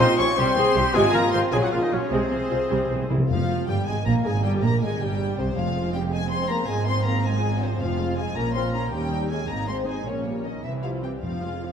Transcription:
Already playing: cello section F4
0.00 viola section C#3 C#4, french horn section C4, clarinet C5, oboe C5, violin section C6
0.19 double bass section A#1, viola section G3 G4, french horn section C#4, clarinet C#5, oboe C#5, violin section C#6
0.37 double bass section C2, viola section C3 G3, french horn section C4, cello section G4, clarinet C5, oboe C5, violin section C6
0.57 double bass section C2, viola section E3 C4, cello section G#4
0.75 double bass section C2, viola section G3 E4, cello section G4
0.94 double bass section G#1, viola section C3 G#3, french horn section G#3, cello section F4, clarinet G#4, oboe G#4, violin section G#5
1.13 double bass section G#1, viola section F3 C4, french horn section A#3, clarinet A#4, oboe A#4, violin section A#5
1.32 double bass section G#1, viola section G#3 F4, french horn section C4, clarinet C5, oboe C5, violin section C6
1.52 double bass section A#1, viola section C#3 F#3, french horn section G#3, oboe G#4, clarinet G#4, violin section G#5
1.62 french horn section F#3, clarinet F#4, oboe F#4, violin section F#5
1.72 double bass section A#1, viola section C#3 A#3, french horn section F3, clarinet F4, oboe F4, violin section F5
1.82 french horn section D#3, clarinet D#4, oboe D#4, violin section D#5
1.91 double bass section A#1, french horn section C#3, viola section F#3 C#4, clarinet C#4, oboe C#4, violin section C#5
2.11 double bass section C2, viola section C3 G#3, french horn section C3, clarinet C4, oboe C4, cello section G#4, violin section C5
2.31 double bass section C2, viola section F3 C4
2.51 double bass section C2, viola section G#3 F4
2.71 double bass section C2, viola section C3 G3, timpani C3
2.79 timpani C3
2.86 timpani C3
2.90 double bass section C2, timpani C3, viola section E3 C4
3.02 timpani C3
3.10 double bass section C2, timpani C3, viola section G3 E4
3.18 timpani C3
3.29 double bass section F1, timpani F2, cello section F2, viola section F3, french horn section F3, violin section F4 F5
3.68 double bass section G1, cello section G2, french horn section G3, viola section G3, violin section G4 G5
3.87 double bass section G#1, cello section G#2, french horn section G#3, viola section G#3, violin section G#4 G#5
4.06 double bass section A#1, cello section A#2, viola section A#3, french horn section A#3, violin section A#4 A#5
4.26 double bass section G#1, cello section G#2, viola section G#3, french horn section G#3, violin section G#4 G#5
4.44 double bass section G1, cello section G2, french horn section G3, viola section G3, violin section G4 G5
4.63 double bass section A#1, cello section A#2, french horn section A#3, viola section A#3, violin section A#4 A#5
4.82 double bass section G#1, cello section G#2, viola section G#3, french horn section G#3, violin section G#4 G#5
5.01 double bass section G1, cello section G2, french horn section G3, viola section G3, violin section G4 G5
5.38 double bass section C2, cello section C2, french horn section C3, viola section C3, violin section C4 C5
5.56 double bass section F1, timpani F2, cello section F2, french horn section F3, viola section G#3 C4, violin section F4 F5
5.93 french horn section G3, violin section G4 G5
6.12 french horn section G#3, violin section G#4 G#5
6.30 french horn section C4, violin section C5 C6
6.49 french horn section A#3, violin section A#4 A#5
6.68 double bass section G#1, cello section G#2, viola section F3, french horn section G#3, violin section G#4 G#5
6.87 french horn section C4, violin section C5 C6
7.05 french horn section A#3, violin section A#4 A#5
7.24 french horn section G#3, violin section G#4 G#5
7.62 french horn section C3, violin section C4 C5
7.81 double bass section F1, cello section F2, french horn section F3, viola section F3 C4, violin section F4 F5
8.00 viola section G#3 F4
8.18 viola section F3 C4, french horn section G#3, violin section G#4 G#5
8.36 double bass section A#1, cello section A#2, viola section F3 C#4, french horn section A#3, violin section A#4 A#5
8.55 viola section A#3 F4, french horn section C4, violin section C5 C6
8.73 viola section F3 C#4, french horn section A#3, violin section A#4 A#5
8.92 double bass section D#2, cello section D#2, french horn section G3, viola section G3 C#4, violin section G4 G5
9.12 viola section A#3 D#4
9.31 viola section G3 C#4, french horn section G#3, violin section G#4 G#5
9.49 double bass section G#1, cello section G#2, french horn section A#3, viola section C4 D#4, violin section A#4 A#5
9.68 viola section G#3 C4, french horn section C4, violin section C5 C6
9.87 french horn section G#3, viola section C4 D#4, violin section G#4 G#5
10.06 double bass section A#1, cello section A#2, french horn section C#3, viola section A#3 C#4, violin section C#4 C#5
10.25 viola section G3 A#3
10.45 french horn section D#3, viola section A#3 C#4, violin section D#4 D#5
10.64 double bass section C2, cello section C3, french horn section E3, viola section E3 C4, violin section E4 E5
10.83 french horn section F3, viola section G3 E4, violin section F4 F5
11.03 viola section E3 C4, french horn section G3, violin section G4 G5
11.23 double bass section F1, timpani F2, cello section F2, viola section F3 C4, french horn section F3, violin section F4 F5
11.43 viola section G#3 F4
11.64 viola section F3 C4

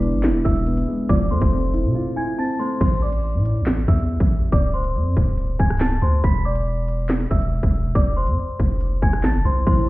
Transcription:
Already playing: 808-style bass E1, grand piano E3 G#3 B3, celesta D5 D6
0.02 grand piano D4, closed hi-hat
0.13 808-style bass G#1
0.23 grand piano E4, snare, clap, closed hi-hat
0.29 808-style bass E1
0.45 808-style bass E1, grand piano D4, celesta E5 E6, kick
0.56 closed hi-hat
0.67 grand piano B3, closed hi-hat
0.77 closed hi-hat
0.88 grand piano G#3
1.09 808-style bass F1, grand piano F3, celesta D5 D6, kick, closed hi-hat
1.31 808-style bass F2, grand piano A3, celesta C5 C6
1.41 808-style bass F1, kick, closed hi-hat
1.52 grand piano C4
1.74 grand piano E4, closed hi-hat
1.84 808-style bass C3
1.95 grand piano F4
2.16 grand piano E4, celesta G#5 G#6
2.38 grand piano C4, celesta A5 A6
2.59 grand piano A3, celesta C5 C6
2.81 808-style bass A1, celesta C5 C6, kick, closed hi-hat, crash
3.02 celesta D5 D6
3.13 closed hi-hat
3.35 808-style bass A2
3.45 closed hi-hat
3.61 808-style bass A1
3.66 snare, clap, closed hi-hat
3.88 808-style bass E2, celesta E5 E6, kick
3.99 closed hi-hat
4.20 808-style bass A1, kick, closed hi-hat
4.52 808-style bass D1, celesta D5 D6, kick, closed hi-hat
4.74 celesta C5 C6
4.84 closed hi-hat
4.95 808-style bass F2
5.17 808-style bass D1, kick, closed hi-hat
5.38 closed hi-hat
5.59 808-style bass C1, celesta G#5 G#6, kick
5.70 cross-stick, closed hi-hat
5.77 celesta A5, snare, clap, closed hi-hat
5.81 celesta A6, closed hi-hat
6.02 808-style bass D2, celesta C5 C6, closed hi-hat
6.24 808-style bass E1, celesta B5 B6, kick, closed hi-hat
6.45 celesta D5 D6
6.55 closed hi-hat
6.88 closed hi-hat
7.09 snare, clap, closed hi-hat
7.31 808-style bass E1, celesta E5 E6, kick
7.42 closed hi-hat
7.63 808-style bass E1, kick, closed hi-hat
7.95 808-style bass F1, celesta D5 D6, kick, closed hi-hat
8.17 celesta C5 C6
8.27 808-style bass F2, closed hi-hat
8.60 808-style bass F1, kick, closed hi-hat
8.81 closed hi-hat
9.02 808-style bass F1, celesta G#5 G#6, kick
9.13 cross-stick, closed hi-hat
9.20 808-style bass A1, snare, clap, closed hi-hat
9.24 celesta A5 A6, closed hi-hat
9.34 808-style bass F1
9.45 808-style bass C2, celesta C5 C6, closed hi-hat
9.67 808-style bass A1, grand piano A2, celesta C5 C6, kick, closed hi-hat

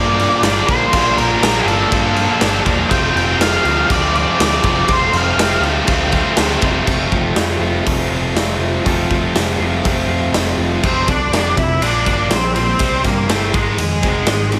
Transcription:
Already playing: picked electric bass G2, distorted electric guitar A#2 F3 A#3 D4 F4, lead electric guitar D5
0.18 distorted electric guitar A#3 D4 F4, crash
0.42 picked electric bass G1, distorted electric guitar A#2 F3 A#3 D4 F4, lead electric guitar D5, snare, crash
0.67 picked electric bass A#1, distorted electric guitar A#3 D4, lead electric guitar C5, kick, crash
0.72 distorted electric guitar F3
0.92 picked electric bass A#1, distorted electric guitar A#2 F3 A#3 D4 F4, kick, crash
1.18 picked electric bass A#1, distorted electric guitar A#3 D4 F4, lead electric guitar A#4, crash
1.41 picked electric bass A#1, distorted electric guitar A#2 F3 A#3 D4 F4, lead electric guitar A#4, snare, crash
1.59 lead electric guitar G4
1.65 picked electric bass G1, distorted electric guitar F3 A#3 D4 F4, lead electric guitar A4, crash
1.69 distorted electric guitar A#3
1.92 picked electric bass G2, kick, crash
2.16 distorted electric guitar A#3 D4 F4, crash
2.39 picked electric bass G1, distorted electric guitar A#2 F3 A#3 D4, snare, crash
2.43 distorted electric guitar A#3 D4 F4
2.65 picked electric bass E1, distorted electric guitar F3 A#3 D4, kick, crash
2.89 picked electric bass F1, distorted electric guitar F2 C3 F3 A3 C4, lead electric guitar G5, kick, crash
2.93 distorted electric guitar F4
3.15 picked electric bass F1, distorted electric guitar F3 A3 C4 F4, lead electric guitar G5, crash
3.39 picked electric bass F1, distorted electric guitar C3 F3 A3 C4, lead electric guitar F5, snare, crash
3.43 distorted electric guitar F4
3.64 picked electric bass D2, distorted electric guitar F3 A3 C4 F4, crash
3.90 picked electric bass D2, lead electric guitar D5, kick, crash
4.14 distorted electric guitar F3 A3 C4 F4, lead electric guitar D5, crash
4.37 picked electric bass D2, distorted electric guitar F2 C3 F3 A3 C4 F4, snare, crash
4.44 lead electric guitar D5
4.63 picked electric bass F1, distorted electric guitar F3 A3 C4, kick, crash
4.87 picked electric bass F1, distorted electric guitar F2 C3 F3 A3 C4, kick, crash
4.91 distorted electric guitar C4 F4, lead electric guitar C5
5.13 picked electric bass F1, distorted electric guitar F3 A3 C4 F4, lead electric guitar F5, crash
5.36 picked electric bass F1, distorted electric guitar C3 F3 A3 C4, snare, crash
5.41 distorted electric guitar F4
5.61 picked electric bass D2, distorted electric guitar A3 C4 F4, crash
5.65 distorted electric guitar F3
5.87 picked electric bass D2, kick, crash
6.12 distorted electric guitar F3 A3 C4 F4, kick, crash
6.36 picked electric bass D2, distorted electric guitar F2 C3 F3 A3 C4 F4, snare, crash
6.61 picked electric bass F1, distorted electric guitar F3 A3 C4, kick, crash
6.85 picked electric bass F1, distorted electric guitar F2 C3 F3 A3 C4, clean electric guitar F2, kick, crash
6.89 distorted electric guitar C4 F4 A4
7.11 picked electric bass F1, clean electric guitar A3, kick
7.35 picked electric bass F2, clean electric guitar C4, snare, open hi-hat
7.59 picked electric bass F1, distorted electric guitar F3 A3 C4, clean electric guitar F4
7.63 distorted electric guitar F2 C3
7.85 picked electric bass F1, clean electric guitar C4, kick, open hi-hat
8.10 picked electric bass F1, clean electric guitar F4
8.35 picked electric bass F1, distorted electric guitar F2 C3 F3 A3 C4, clean electric guitar A3, snare, open hi-hat
8.58 picked electric bass F1, clean electric guitar F3
8.84 picked electric bass F1, clean electric guitar F2, distorted electric guitar F2 C3 F3 A3 C4 F4 A4, kick, open hi-hat
9.09 picked electric bass F1, clean electric guitar A3, kick
9.33 picked electric bass F1, clean electric guitar C4, snare, open hi-hat
9.58 picked electric bass F1, distorted electric guitar F3 A3 C4, clean electric guitar F4
9.62 distorted electric guitar F2 C3
9.83 picked electric bass F1, clean electric guitar C4, kick, open hi-hat
10.07 picked electric bass F2, clean electric guitar F4
10.32 picked electric bass F1, distorted electric guitar F2 C3 F3, clean electric guitar A3, snare, open hi-hat
10.37 distorted electric guitar A3 C4
10.58 picked electric bass F1, clean electric guitar F3
10.83 picked electric bass F1, distorted electric guitar F2 C3 F3, clean electric guitar F3, lead electric guitar C4, kick, crash
11.08 picked electric bass C2, distorted electric guitar F2 C3, lead electric guitar D4, clean electric guitar A4, kick, ride
11.31 picked electric bass F1, distorted electric guitar F2 C3 F3, clean electric guitar D4, snare, ride
11.57 picked electric bass F1, distorted electric guitar F2 C3, clean electric guitar C4, lead electric guitar E4, kick, ride
11.79 picked electric bass A#1, clean electric guitar A#2, distorted electric guitar A#2 F3, lead electric guitar D4, ride
11.83 distorted electric guitar A#3
12.05 picked electric bass G1, distorted electric guitar A#2 F3 A#3, clean electric guitar A#3, lead electric guitar D4, kick, ride
12.29 picked electric bass A#1, distorted electric guitar A#2 F3, lead electric guitar C4, clean electric guitar D4, snare, ride
12.54 distorted electric guitar A#2 F3, clean electric guitar A#3, lead electric guitar C4, ride
12.79 picked electric bass C2, distorted electric guitar C3 G3 C4, clean electric guitar C3, kick, ride
13.03 picked electric bass G2, distorted electric guitar C3 G3, lead electric guitar A#3, clean electric guitar G4, kick, ride
13.27 picked electric bass G1, distorted electric guitar C3 G3 C4, lead electric guitar A3, clean electric guitar E4, snare, ride
13.53 picked electric bass G#1, distorted electric guitar G#2 D#3 G#3, clean electric guitar G#3, lead electric guitar G#3, kick, ride
13.77 picked electric bass F2, distorted electric guitar G#2 D#3, clean electric guitar G#3, ride
14.03 picked electric bass F1, distorted electric guitar G#2 D#3 G#3, clean electric guitar C4, kick, ride
14.26 picked electric bass G#1, distorted electric guitar G#2 D#3, clean electric guitar D#4, snare, ride
14.52 distorted electric guitar G#2 D#3, clean electric guitar C4, ride

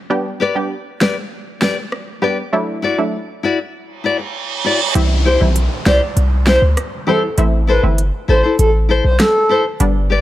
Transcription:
Already playing: downlifter
0.10 synth stab G3 B3 D4 G4
0.40 nylon-string guitar G4 B4 D5
0.55 synth stab G3 B3 D4 G4
1.00 nylon-string guitar G4 B4 D5, snare
1.61 nylon-string guitar G4 B4 D5, snare
1.92 cross-stick
2.22 synth stab G3 B3 D4 G4, nylon-string guitar G4 B4 D5
2.52 synth stab F#3 A3 D4 E4
2.82 nylon-string guitar E4 F#4 D5
2.98 synth stab F#3 A3 D4 E4
3.43 nylon-string guitar E4 F#4 D5
3.74 reverse cymbal
4.04 nylon-string guitar E4 F#4 D5
4.19 muted nylon-string guitar stroke
4.64 nylon-string guitar E4 F#4 D5
4.95 808-style bass C2, synth stab E3 G3 C4 E4, closed hi-hat, downlifter
5.25 nylon-string guitar E4 G4 C5, soft synth lead C5
5.40 808-style bass B1, synth stab E3 G3 C4 E4
5.56 closed hi-hat
5.86 808-style bass C2, nylon-string guitar E4 G4 C5, soft synth lead D5, snare
6.17 808-style bass C2, closed hi-hat
6.46 nylon-string guitar E4 G4 C5, soft synth lead C5, snare
6.62 808-style bass D2
6.77 cross-stick, closed hi-hat
7.07 synth stab E3 G3 C4 E4, nylon-string guitar E4 G4 C5, soft synth lead A4
7.38 808-style bass A1, synth stab E3 A3 C4 E4, closed hi-hat
7.67 nylon-string guitar E4 A4 C5, soft synth lead B4
7.83 808-style bass G1, synth stab E3 A3 C4 E4
7.98 closed hi-hat
8.28 808-style bass A1, nylon-string guitar E4 A4 C5, soft synth lead C5
8.43 nylon-string guitar E4 A4 C5
8.59 808-style bass A1, soft synth lead A4, closed hi-hat
8.89 nylon-string guitar E4 A4 C5
9.04 808-style bass B1, soft synth lead C5
9.20 soft synth lead A4, cross-stick, snare, closed hi-hat
9.49 nylon-string guitar E4 A4 C5
9.80 808-style bass G1, synth stab D3 G3 B3 D4, closed hi-hat
10.10 nylon-string guitar G4 B4 D5

